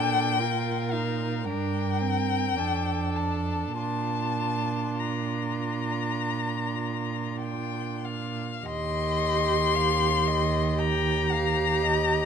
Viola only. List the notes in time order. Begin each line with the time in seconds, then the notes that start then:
Already playing: D4
0.40 F4
0.93 D#4
1.47 D4
2.02 C4
2.57 D4
3.79 D4
8.65 G4
10.79 G4